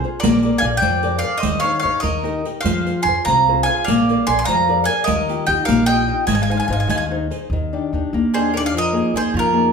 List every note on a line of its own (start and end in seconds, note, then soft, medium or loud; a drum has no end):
0.04 0.19 F4 soft
0.04 0.19 G#4 soft
0.04 0.20 C5 medium
0.19 0.49 A#1 medium
0.19 0.62 A#3 medium
0.19 0.58 A#4 medium
0.19 0.62 D5 medium
0.23 riq medium
0.43 0.62 G#4 soft
0.43 0.62 A#4 soft
0.43 0.63 D5 medium
0.43 riq soft
0.58 0.75 A#1 medium
0.58 0.66 F5 medium
0.58 0.64 G#5 medium
0.63 0.95 G#4 soft
0.63 0.95 A#4 soft
0.63 0.96 D5 medium
0.77 1.17 D5 medium
0.77 1.17 G5 medium
0.82 1.21 F2 medium
0.82 1.22 F3 medium
0.82 riq soft
1.03 1.22 G#4 medium
1.03 1.22 A#4 soft
1.03 1.23 D5 medium
1.03 riq soft
1.18 1.39 D5 medium
1.18 1.39 F5 medium
1.23 1.39 G#4 soft
1.23 1.39 A#4 soft
1.23 1.40 D5 medium
1.38 1.60 C5 medium
1.38 1.59 D#5 medium
1.43 1.70 D#2 medium
1.43 1.83 D#3 medium
1.43 riq medium
1.60 1.81 C#5 medium
1.60 1.78 F5 medium
1.60 riq soft
1.64 1.83 D#4 soft
1.64 1.83 G#4 soft
1.64 1.84 C5 soft
1.80 2.02 C#5 medium
1.80 2.00 F5 medium
1.84 1.97 D#2 medium
1.84 2.00 D#4 soft
1.84 2.00 G#4 soft
1.84 2.01 C5 soft
2.00 2.43 D#2 medium
2.00 2.44 D#3 medium
2.00 2.46 A#4 medium
2.00 2.45 D#5 medium
2.00 riq soft
2.24 2.44 D#4 medium
2.24 2.44 G4 soft
2.24 2.45 A#4 medium
2.24 riq soft
2.45 2.61 D#4 soft
2.45 2.61 G4 soft
2.45 2.62 A#4 soft
2.45 riq soft
2.61 2.91 F2 medium
2.61 3.02 C5 medium
2.61 3.01 F5 medium
2.65 3.05 F3 medium
2.65 riq medium
2.86 3.06 F4 soft
2.86 3.07 G#4 soft
2.86 3.07 C5 soft
2.86 riq soft
3.02 3.19 F2 medium
3.02 3.23 G#5 medium
3.02 3.24 C6 medium
3.08 3.40 F4 soft
3.08 3.40 G#4 soft
3.08 3.41 C5 soft
3.25 3.66 C2 medium
3.25 3.67 C3 medium
3.25 3.64 F5 medium
3.25 3.63 A#5 medium
3.25 riq soft
3.49 3.67 F4 medium
3.49 3.67 G#4 soft
3.49 3.68 C5 medium
3.63 3.85 F5 medium
3.63 3.86 G#5 loud
3.68 3.84 F4 soft
3.68 3.84 G#4 soft
3.68 3.85 C5 soft
3.85 4.14 A#1 medium
3.85 4.24 D5 medium
3.85 4.28 F5 medium
3.85 riq medium
3.89 4.28 A#3 medium
4.09 4.27 G#4 soft
4.09 4.28 A#4 soft
4.09 4.29 D5 soft
4.09 riq soft
4.27 4.41 A#1 loud
4.27 4.61 G#4 soft
4.27 4.61 A#4 soft
4.27 4.61 D5 medium
4.27 4.40 G#5 medium
4.27 4.38 C6 medium
4.39 4.44 G#5 medium
4.39 4.45 C6 medium
4.44 4.87 F2 loud
4.44 4.83 F5 medium
4.44 4.85 A#5 loud
4.44 riq soft
4.49 4.87 F3 medium
4.69 4.86 G#4 medium
4.69 4.87 A#4 medium
4.69 4.87 D5 medium
4.84 5.04 G#4 soft
4.84 5.04 F5 medium
4.84 5.05 G#5 loud
4.88 5.04 A#4 soft
4.88 5.04 D5 soft
5.04 5.34 D#2 medium
5.04 5.44 A#4 medium
5.04 5.43 D#5 medium
5.04 riq medium
5.09 5.47 D#3 medium
5.28 5.47 D#4 soft
5.28 5.47 F4 soft
5.28 5.48 G4 medium
5.28 riq soft
5.46 5.61 D#2 loud
5.46 5.80 D#4 soft
5.46 5.81 F4 soft
5.46 5.81 G4 medium
5.46 5.65 D#5 medium
5.46 5.65 G5 medium
5.65 6.08 A#1 loud
5.65 6.07 A#3 medium
5.65 5.85 A#4 medium
5.65 5.86 F5 medium
5.65 riq medium
5.86 6.07 D#4 medium
5.86 6.07 F4 medium
5.86 6.08 G4 medium
5.86 6.25 D#5 medium
5.86 6.25 G5 loud
5.86 riq soft
6.08 6.24 D#4 medium
6.08 6.24 F4 medium
6.08 6.25 G4 medium
6.27 6.54 G#1 medium
6.27 6.68 G#3 medium
6.27 6.35 D#5 medium
6.27 6.34 G#5 medium
6.27 riq medium
6.34 6.41 F5 soft
6.34 6.42 G#5 medium
6.42 6.49 F5 medium
6.42 6.50 G#5 medium
6.49 6.68 D#4 soft
6.49 6.68 G#4 soft
6.49 6.69 C5 soft
6.49 6.56 F5 soft
6.49 6.58 G#5 medium
6.57 6.63 F5 medium
6.57 6.66 G#5 medium
6.64 6.72 F5 soft
6.64 6.71 G#5 soft
6.69 6.82 G#1 medium
6.69 7.02 D#4 soft
6.69 7.02 G#4 soft
6.69 7.03 C5 soft
6.73 6.77 F5 soft
6.73 6.79 G#5 medium
6.79 6.86 F5 soft
6.79 6.88 G#5 medium
6.87 7.29 D#2 medium
6.87 7.30 D#3 medium
6.87 6.94 F5 soft
6.87 6.96 G#5 medium
6.87 riq soft
6.95 7.03 F5 soft
6.95 7.04 G#5 medium
7.11 7.29 D#4 medium
7.11 7.29 G#4 soft
7.11 7.30 C5 soft
7.30 7.47 D#4 soft
7.30 7.47 G#4 soft
7.30 7.47 C5 soft
7.30 riq soft
7.50 7.77 D#2 medium
7.50 7.92 D#3 medium
7.73 7.92 D4 soft
7.73 7.93 D#4 soft
7.73 7.93 G4 soft
7.93 8.06 D#2 medium
7.93 8.26 D4 soft
7.93 8.26 D#4 soft
7.93 8.27 G4 medium
8.13 8.74 D#2 medium
8.13 8.53 A#3 medium
8.34 8.54 D4 medium
8.34 8.54 D#4 medium
8.34 8.55 G4 medium
8.34 8.53 G#4 medium
8.34 8.55 C5 medium
8.54 8.71 D4 medium
8.54 8.71 D#4 soft
8.54 8.71 G4 soft
8.54 8.59 A#4 medium
8.54 8.62 D5 loud
8.66 8.73 D5 medium
8.66 8.74 F5 medium
8.74 9.00 F2 loud
8.74 9.13 F3 medium
8.74 9.13 A#4 medium
8.78 9.17 D#5 loud
8.93 9.14 A#3 soft
8.93 9.14 D#4 soft
8.93 9.15 G#4 medium
9.14 9.27 F2 medium
9.14 9.47 A#3 soft
9.14 9.47 D#4 soft
9.14 9.47 G#4 medium
9.14 9.33 G#4 medium
9.14 9.34 C5 medium
9.34 9.72 F2 medium
9.34 9.72 F3 medium
9.34 9.72 F4 medium
9.39 9.72 A#4 medium
9.53 9.72 A#3 medium
9.53 9.72 D#4 soft
9.53 9.72 G#4 medium